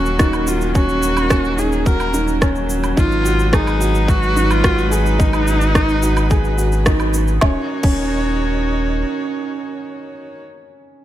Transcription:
Already playing: analog synth bass D#1, string quartet D#3 F#3 A#3 C#4, felt piano C#4 D#4 F#4, viola F#4
0.06 shaker
0.19 felt piano D#4, kick, cross-stick, shaker
0.33 low woodblock, shaker
0.47 viola F4, felt piano F#4, shaker
0.61 shaker
0.75 felt piano C#4, viola F#4, kick, shaker
0.89 shaker
1.03 shaker
1.17 low woodblock, shaker
1.30 felt piano C#4, kick, cross-stick, shaker
1.44 shaker
1.58 felt piano D#4, viola G#4, shaker
1.72 shaker
1.86 felt piano F#4, viola A#4, kick, shaker
2.00 low woodblock, shaker
2.14 felt piano D#4, shaker
2.28 shaker
2.41 felt piano C#4, kick, cross-stick, shaker
2.56 shaker
2.70 shaker
2.84 low woodblock, shaker
2.97 analog synth bass G#1, string quartet G#3 D#4 B4, felt piano D#4, viola F4, kick, shaker
3.12 shaker
3.25 felt piano F#4, shaker
3.39 shaker
3.53 viola D#4, felt piano G#4, kick, cross-stick, shaker
3.67 low woodblock, shaker
3.81 felt piano F#4, shaker
3.95 shaker
4.08 viola F#4, kick, shaker
4.23 shaker
4.36 felt piano D#4, shaker
4.51 viola F4, low woodblock, shaker
4.64 felt piano F#4, kick, cross-stick, shaker
4.78 shaker
4.91 viola D#4, felt piano G#4, shaker
5.06 shaker
5.19 felt piano D#4, kick, shaker
5.33 low woodblock, shaker
5.47 shaker
5.61 shaker
5.75 felt piano D#4, kick, cross-stick, shaker
5.89 shaker
6.03 felt piano F#4, shaker
6.17 low woodblock, shaker
6.30 felt piano G#4, kick, shaker
6.44 shaker
6.58 felt piano F#4, shaker
6.72 shaker
6.86 felt piano D#4, kick, cross-stick, shaker
7.00 low woodblock, shaker
7.14 shaker
7.28 shaker
7.41 analog synth bass D#1, string quartet D#3 D#4 F#4 C#5, felt piano C#4, kick, snare
7.83 analog synth bass D#1, felt piano C#4, kick, crash

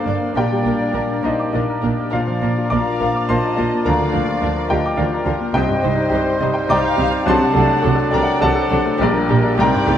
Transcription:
Already playing: grand piano G2 D3 A#3 D4 A4 A#4 D5 G5 A5 A#5 D6, french horn section A#3 D4, bassoon A#3, clarinet D4, violin section C5, oboe D5, flute F5
0.04 double bass section G1, cello section G2, viola section A#3 D4, grand piano D4, violin section D5
0.21 grand piano A#3
0.33 double bass section A#1, cello section A#2, grand piano A#2 G5, viola section A#3 D4, violin section A#4, flute D5
0.38 grand piano G4 D5
0.52 grand piano G3
0.63 double bass section A#1, cello section A#2, viola section A#3 D4, violin section A#4
0.68 grand piano A#3
0.82 grand piano D4
0.92 double bass section A#1, cello section A#2, viola section A#3 D4, violin section A#4
0.97 grand piano D5
1.12 grand piano A#4
1.22 double bass section A#1, cello section A#2, viola section A#3 D4, grand piano D#4 D#5, violin section G4 A#4, flute C5
1.28 grand piano D5
1.39 grand piano D6
1.52 double bass section A#1, cello section A#2, viola section A#3 D4, grand piano D4 A#4 D5, violin section G4 A#4, flute A#4
1.70 grand piano A#4
1.82 double bass section A#1, cello section A#2, viola section A#3 D4, grand piano D4, violin section A#4
2.00 grand piano A#3
2.10 double bass section A#1, cello section A#2, grand piano A#2 F4 D5 F5, bassoon F3, french horn section A#3 D4, viola section A#3 D4, clarinet F4, violin section A#4, oboe D5, flute D5
2.28 grand piano F3
2.41 double bass section A#1, cello section A#2, viola section A#3 D4, grand piano A#3, violin section A#4
2.58 grand piano F4
2.70 double bass section A#1, cello section A#2, viola section A#3 D4, violin section A#4 F5, grand piano D5 A#5 D6, flute A#5
2.86 grand piano A#4
3.00 double bass section A#1, cello section A#2, viola section A#3 D4, violin section A#4, grand piano F5
3.16 grand piano D6
3.27 cello section A#2, viola section A#3 D4, violin section A#4 D#5, grand piano C5 F5 C6, flute A5
3.31 double bass section A#1
3.44 grand piano A#4
3.57 double bass section A#1, cello section A#2, viola section A#3 D4, grand piano F4, violin section A#4
3.74 grand piano A#3
3.84 double bass section D2, cello section D3, viola section F3 D4, french horn section F3, violin section A#4 D5, grand piano A#4 F5 A#5, flute F5
3.88 grand piano D2
4.02 grand piano D3
4.12 double bass section D2, cello section D3, viola section F3 D4, violin section A#4
4.17 grand piano A#3
4.29 grand piano F4
4.41 double bass section D2, cello section D3, viola section F3 D4, violin section A#4, grand piano D5
4.57 grand piano A#4
4.68 double bass section D2, cello section D3, viola section F3 D4, grand piano G4 G5, violin section A#4, flute D#5
4.73 grand piano F5
4.86 grand piano D6
4.97 double bass section D2, cello section D3, viola section F3 D4, grand piano F4 D5 F5, violin section A#4, flute D5
5.14 grand piano A#4
5.24 double bass section D2, cello section D3, viola section F3 D4, grand piano F4, violin section A#4
5.40 grand piano A#3
5.52 grand piano C2 G4 D#5 G5, double bass section C2, cello section C3, viola section G3 D#4, bassoon G3, french horn section G3 D#4, oboe C5, violin section C5, flute D#5
5.69 grand piano G2
5.83 double bass section C2, cello section C3, viola section G3 D#4, grand piano C4, violin section C5
5.96 grand piano D#4
6.10 double bass section C2, cello section C3, viola section G3 D#4, clarinet D#4, grand piano G4, violin section C5
6.24 grand piano C5
6.40 double bass section C2, cello section C3, viola section G3 D#4, violin section C5, grand piano D#5
6.54 grand piano G5
6.68 double bass section C2, cello section C3, viola section G3 D#4, violin section C5 F5, grand piano D5 D#5 G5 D6, flute A#5
6.83 grand piano C5
6.96 double bass section C2, cello section C3, viola section G3 D#4, grand piano D#4, violin section C5
7.10 grand piano C4
7.25 grand piano C2 C6, double bass section C2, cello section C3, french horn section F#3 D4, bassoon F#3, viola section F#3 D4, clarinet D4, violin section A4 F#5, oboe D5, flute A5
7.29 grand piano C5 A5
7.39 grand piano C3
7.53 double bass section C2, cello section C3, viola section F#3 D4, grand piano A3, violin section A4
7.67 grand piano D4
7.81 double bass section C2, cello section C3, viola section F#3 D4, grand piano F#4, violin section A4
7.95 grand piano A4
8.10 double bass section C2, cello section C3, viola section F#3 D4, violin section A4 D5, grand piano D5 A#5, flute G5
8.15 grand piano A#4
8.23 grand piano F#5
8.40 double bass section C2, cello section C3, viola section F#3 D4, violin section A4 C5, grand piano A4 D5 F#5 A5, flute F#5
8.55 grand piano A4
8.70 double bass section C2, cello section C3, viola section F#3 D4, grand piano D4, violin section A4
8.86 grand piano A3
8.98 double bass section A#1, grand piano A#1, cello section A#2, viola section G3 D4, bassoon G3, french horn section D4, violin section G4, flute A#4
9.02 french horn section G3, grand piano D4 A#4 D5
9.15 grand piano A#2
9.28 double bass section A#1, cello section A#2, viola section G3 D4, grand piano A#3, violin section G4
9.44 grand piano D4
9.56 double bass section C2, grand piano C2 A#5, cello section C3, french horn section G3 D#4, viola section A3 D#4, clarinet D#4, violin section G4 D5, oboe C5, flute G5
9.61 grand piano A#4 G5
9.74 grand piano G2
9.86 double bass section C2, cello section C3, viola section A3 D#4, grand piano A3, violin section G4

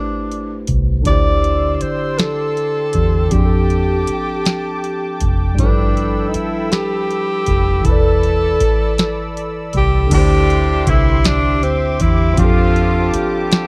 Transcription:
Already playing: tine electric piano A3 E4 G4 B4 C5, tenor saxophone D4
0.32 closed hi-hat
0.67 fingered electric bass C2, kick, closed hi-hat
1.01 tine electric piano D3 D4, closed hi-hat
1.06 fingered electric bass D2, tine electric piano E4 G4, analog synth pad G4 D5 C6 E6, tenor saxophone D5, kick
1.12 tine electric piano C5
1.44 closed hi-hat
1.75 tenor saxophone D5
1.81 tenor saxophone C5, muted fingered electric bass stroke, closed hi-hat
2.19 tenor saxophone A4, snare, closed hi-hat
2.57 closed hi-hat
2.93 fingered electric bass E2, kick, closed hi-hat
3.28 tine electric piano F3 C4, tenor saxophone G4, kick, closed hi-hat
3.32 fingered electric bass F2, tine electric piano D4 G4, analog synth pad G5 A5 D6
3.39 tine electric piano G#4
3.45 tine electric piano A4
3.70 closed hi-hat
4.07 muted fingered electric bass stroke, closed hi-hat
4.45 snare, closed hi-hat
4.84 closed hi-hat
5.20 fingered electric bass F1, kick, closed hi-hat
5.55 tine electric piano G3 D4, analog synth pad A4 B5 E6, closed hi-hat
5.59 fingered electric bass G1, tine electric piano F3 E4, tenor saxophone D4, kick
5.63 tine electric piano A4 B4
5.97 closed hi-hat
6.28 tenor saxophone D#4
6.34 tenor saxophone E4, muted fingered electric bass stroke, closed hi-hat
6.72 tenor saxophone G4, snare, closed hi-hat
7.11 closed hi-hat
7.46 fingered electric bass F1, kick, closed hi-hat
7.81 tine electric piano E3 E4, analog synth pad A4 D5, kick, closed hi-hat
7.85 fingered electric bass E1, tenor saxophone A4, tine electric piano A4 B4
7.92 tine electric piano D5
8.23 closed hi-hat
8.60 muted fingered electric bass stroke, kick, closed hi-hat
8.98 snare, closed hi-hat
9.37 closed hi-hat
9.73 fingered electric bass C2, tenor saxophone G4, kick, closed hi-hat
10.07 tine electric piano D3 D4
10.11 fingered electric bass D2, horn section A2 D3 G3 D4, tine electric piano E4 G4, analog synth pad G4 E5 C6 D6, tenor saxophone G4, kick, closed hi-hat, crash
10.17 tine electric piano C5
10.50 closed hi-hat
10.87 fingered electric bass C2, horn section C3 E3 A3 E4, tenor saxophone E4, kick, closed hi-hat
11.24 tenor saxophone D4, snare, closed hi-hat
11.63 fingered electric bass D2, tenor saxophone C4, closed hi-hat
12.00 fingered electric bass E2, tenor saxophone E4, kick, closed hi-hat
12.34 tine electric piano F3 C4, closed hi-hat
12.38 fingered electric bass F2, horn section D3 F3 C4 F4, tine electric piano D4 G4, analog synth pad F4 A5, tenor saxophone F4, kick
12.44 tine electric piano A4
12.76 closed hi-hat
13.13 horn section D3 G3 C4 G4, muted fingered electric bass stroke, closed hi-hat
13.52 snare, closed hi-hat

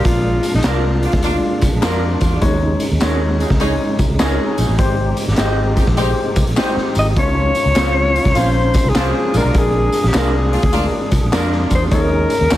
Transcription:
Already playing: upright piano G#3 D4 A#4, tonewheel organ G#3 A#3 D4
0.05 fingered electric bass A#1, alto saxophone F4, kick, closed hi-hat, tambourine
0.43 closed hi-hat, tambourine
0.54 fingered electric bass A#1, alto saxophone D#4, snare
0.63 upright piano G#3 D4 A#4, horn section A#3 D4 F4, clean electric guitar D4 G#4 A#4, alto saxophone F4, snare, clap, closed hi-hat, tambourine
1.03 horn section A#3 D4 F4, closed hi-hat
1.12 fingered electric bass D2, kick, snare, closed hi-hat
1.22 upright piano G#3 D4 F4, horn section A#3 D4 F4, closed hi-hat, tambourine
1.61 fingered electric bass C2, kick, closed hi-hat, tambourine
1.73 fingered electric bass A#1
1.81 upright piano G#3 D4 A#4, horn section A#3 D4 F4, clean electric guitar D4 G#4 A#4, snare, clap, closed hi-hat, tambourine
2.21 fingered electric bass E2, kick, closed hi-hat, tambourine
2.41 fingered electric bass D#2, upright piano G#3 D#4 C#5, tonewheel organ C#4 D#4, kick, closed hi-hat, tambourine
2.80 closed hi-hat, tambourine
2.91 fingered electric bass D#2
3.00 upright piano G#3 D#4 C#5, clean electric guitar C#4 G#4 A#4, horn section C#4 D#4 G#4, snare, clap, closed hi-hat, tambourine
3.40 horn section C#4 D#4 G#4, closed hi-hat, tambourine
3.50 fingered electric bass C#2, kick, snare
3.60 upright piano G#3 D#4 C#5, horn section C#4 D#4 G#4, closed hi-hat, tambourine
3.99 fingered electric bass C2, kick, closed hi-hat, tambourine
4.10 fingered electric bass C#2
4.19 fingered electric bass C#2, upright piano G#3 D#4 C#5, horn section C#4 D#4 G#4, clean electric guitar C#4 G#4 A#4, snare, clap, closed hi-hat, tambourine
4.58 fingered electric bass A#1, closed hi-hat, tambourine
4.69 fingered electric bass A1
4.78 fingered electric bass G#1, upright piano G#3 G4 C5, tonewheel organ D#4 G4, kick, closed hi-hat, tambourine
5.17 closed hi-hat, tambourine
5.28 fingered electric bass G#1, snare
5.36 upright piano G#3 G4 D#5, horn section C4 D#4 G4, clean electric guitar D#4 G4 C5, snare, clap, closed hi-hat, tambourine
5.77 horn section C4 D#4 G4, kick, closed hi-hat, tambourine
5.87 fingered electric bass A#1, kick, snare
5.97 upright piano G#3 G4 C5, horn section C4 D#4 G4, closed hi-hat, tambourine
6.36 fingered electric bass C2, kick, closed hi-hat, tambourine
6.47 fingered electric bass A#1, closed hi-hat
6.56 upright piano G#3 G4 C5, horn section C4 D#4 G4, clean electric guitar D#4 G4 C5, snare, clap, closed hi-hat, tambourine
6.76 muted fingered electric bass stroke, snare
6.95 fingered electric bass G#1, alto saxophone D#5, closed hi-hat, tambourine
7.17 fingered electric bass C#2, upright piano F3 C#4 C#5, tonewheel organ C#4 F4, alto saxophone C#5, kick, closed hi-hat
7.55 closed hi-hat, tambourine
7.65 fingered electric bass C#2
7.75 fingered electric bass C#2, horn section F3 C#4 F4, upright piano F3 C#4 C#5, clean electric guitar F4 G#4 C5, snare, clap, closed hi-hat, tambourine
8.14 horn section F3 C#4 F4, closed hi-hat, tambourine
8.25 fingered electric bass C2, kick, snare, closed hi-hat
8.34 fingered electric bass A#1, horn section F3 C#4 F4, upright piano F3 C#4 C5, closed hi-hat, tambourine
8.39 alto saxophone C5
8.74 kick, closed hi-hat, tambourine
8.85 fingered electric bass C2
8.89 alto saxophone G#4
8.94 fingered electric bass C2, upright piano F3 C#4 C5, horn section A#3 D4 F4, clean electric guitar F4 G#4 C5, snare, clap, closed hi-hat, tambourine
9.33 fingered electric bass A#1, upright piano G#3 D4 G#4, tonewheel organ A#3 D4 G#4, alto saxophone A#4, closed hi-hat, tambourine
9.42 fingered electric bass B1, upright piano A#4
9.54 fingered electric bass A#1, kick, closed hi-hat, tambourine
9.59 alto saxophone G#4
9.92 closed hi-hat, tambourine
10.04 fingered electric bass A#1, snare
10.08 alto saxophone G4
10.13 fingered electric bass C2, upright piano G#3 D4 A#4, horn section A#3 D4 F4, clean electric guitar D4 G#4 A#4, snare, clap, closed hi-hat, tambourine
10.18 alto saxophone G#4
10.52 horn section A#3 D4 F4, closed hi-hat
10.62 fingered electric bass D2, kick, closed hi-hat
10.73 upright piano G#3 D4 A#4, horn section A#3 D4 F4, closed hi-hat, tambourine
11.11 fingered electric bass C2, kick, closed hi-hat, tambourine
11.23 fingered electric bass A#1
11.32 fingered electric bass F2, upright piano G#3 D4 A#4, horn section A#3 D4 F4, clean electric guitar D4 G#4 A#4, snare, clap, closed hi-hat, tambourine
11.52 snare
11.70 fingered electric bass E2, kick, closed hi-hat, tambourine
11.75 alto saxophone C5
11.91 fingered electric bass D#2, upright piano G#3 D#4 C#5, tonewheel organ C#4 D#4, alto saxophone A#4, kick, closed hi-hat, tambourine
12.30 closed hi-hat, tambourine
12.41 fingered electric bass D#2
12.50 upright piano G#3 D#4 C#5, clean electric guitar C#4 G#4 A#4, horn section C#4 D#4 G#4, snare, clap, closed hi-hat, tambourine

